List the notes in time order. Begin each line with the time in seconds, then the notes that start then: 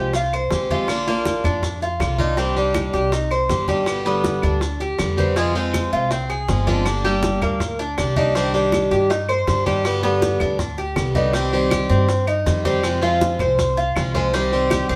Already playing: C2 F3 G#3 C4 G4
0.13 F4, muted steel-string acoustic guitar stroke, high bongo, high conga, maracas
0.33 C5, high conga, claves, maracas
0.51 A#1 F3 G#3 C4 G4, high bongo, low bongo, high conga, maracas
0.70 F3 G#3 C4 F4 G4, high conga, maracas
0.88 D3 A#3 D4 F4, high bongo, high conga, claves, maracas
1.07 A#3 D4 F4, high bongo, high conga, maracas
1.25 high bongo, high conga, maracas
1.44 F2 D4, high bongo, high conga, low conga, claves, maracas
1.62 muted steel-string acoustic guitar stroke, high bongo, high conga, low conga, maracas
1.81 F4, high bongo, high conga, maracas
2.00 C2 D3 A#3 D4 F4, high bongo, low bongo, high conga, claves, maracas
2.18 A#3 D4 D#4 F4, high conga, maracas
2.37 C3 D#3 G3 C4 D4 G4, high bongo, high conga, maracas
2.56 D#3 G3 D4 G4, high conga, maracas
2.74 high bongo, high conga, claves, maracas
2.93 C2 G4, high conga, maracas
3.12 D#4, muted steel-string acoustic guitar stroke, high bongo, high conga, maracas
3.31 C5, high conga, claves, maracas
3.49 G1 D#3 G3 D4 G4, high bongo, low bongo, high conga, maracas
3.68 D#3 G3 D4 G4, high conga, maracas
3.86 B2 D3 G3 B3 G4, high bongo, high conga, claves, maracas
4.05 D3 G3 B3 G4, high bongo, high conga, maracas
4.24 high bongo, high conga, maracas
4.42 D2 D4, high bongo, high conga, low conga, claves, maracas
4.61 muted steel-string acoustic guitar stroke, high bongo, high conga, maracas
4.80 G4, high bongo, high conga, maracas
4.99 F2 D3 G3 B3 G4, high bongo, low bongo, high conga, claves, maracas
5.17 D3 G3 B3 C4 G4, high conga, maracas
5.36 C3 F3 G#3 C4 F4, high bongo, high conga, maracas
5.55 F3 G#3 C4 F4, high conga, maracas
5.73 high bongo, high conga, claves, maracas
5.93 C2 F4, high conga, maracas
6.11 C4, muted steel-string acoustic guitar stroke, high bongo, high conga, maracas
6.30 G#4, high conga, claves, maracas
6.48 G1 F3 G#3 C4 F4, high bongo, low bongo, high conga, maracas
6.67 F3 G#3 C4 D4 F4, high conga, maracas
6.85 D3 G3 A#3 D4 G4, high bongo, claves, maracas
7.04 G3 A#3 D4 G4, high bongo, high conga, maracas
7.23 high bongo, high conga, maracas
7.42 D2 A#3, high bongo, high conga, low conga, claves, maracas
7.60 muted steel-string acoustic guitar stroke, high bongo, high conga, low conga, maracas
7.79 D4, high bongo, high conga, maracas
7.98 C2 G3 A#3 D4 G4, high bongo, low bongo, high conga, claves, maracas
8.16 G3 A#3 D4 D#4 G4, high conga, maracas
8.35 C3 D#3 G3 C4 D4 G4, high bongo, maracas
8.54 D#3 G3 D4 G4, high conga, maracas
8.72 high bongo, high conga, claves, maracas
8.91 G2 G4, high conga, maracas
9.10 D#4, muted steel-string acoustic guitar stroke, high bongo, high conga, maracas
9.29 C5, high conga, claves, maracas
9.47 G2 D#3 G3 D4 G4, high bongo, low bongo, high conga, maracas
9.66 D#3 G3 D4 G4, high conga, maracas
9.85 B2 D3 G3 B3 G4, high bongo, high conga, claves, maracas
10.03 D3 G3 B3 G4, high bongo, high conga, maracas
10.22 high bongo, high conga, maracas
10.40 D2 D4, high bongo, high conga, low conga, claves, maracas
10.59 muted steel-string acoustic guitar stroke, high bongo, high conga, low conga, maracas
10.78 G4, high bongo, high conga, maracas
10.96 C2 D3 G3 B3 G4, high bongo, low bongo, high conga, claves, maracas
11.15 D3 G3 B3 D#4 G4, high conga, maracas
11.33 C3 D#3 G3 C4 G4, high bongo, high conga, maracas
11.53 D#3 G3 C4 G4, high conga, maracas
11.71 G4, high bongo, high conga, claves, maracas
11.90 G2 C4, maracas
12.09 muted steel-string acoustic guitar stroke, high bongo, high conga, maracas
12.27 D#4, high conga, claves, maracas
12.46 F2 D#3 G3 C4 G4, high bongo, low bongo, high conga, maracas
12.65 D#3 G3 C4 G4, high conga, maracas
12.83 C3 F3 G#3 C4 F4, high bongo, high conga, claves, maracas
13.02 F3 G#3 C4 F4, high bongo, high conga, maracas
13.21 high bongo, high conga, maracas
13.39 C2 C5, high bongo, high conga, low conga, claves, maracas
13.59 muted steel-string acoustic guitar stroke, high bongo, high conga, low conga, maracas
13.77 F4, high bongo, high conga, maracas
13.96 C2 F3 G#3 C4 F4, high bongo, low bongo, high conga, claves, maracas
14.14 F3 G#3 C4 F4 C5, high conga, maracas
14.33 C3 D#3 G3 C4 G4, high bongo, maracas
14.52 D#3 G3 C4 G4, high conga, maracas
14.70 G4, high bongo, high conga, claves, maracas
14.89 C2 C4, high conga, maracas